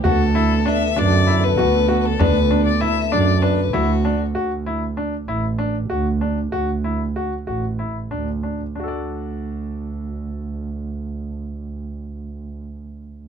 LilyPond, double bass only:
\new Staff \with { instrumentName = "Double bass" } { \clef bass \time 7/8 \key d \major \tempo 4 = 96 d,4. fis,4 d,4 | d,4. fis,4 d,4 | d,4. a,,4 d,4 | d,4. a,,4 d,4 |
d,2.~ d,8~ | d,2.~ d,8 | }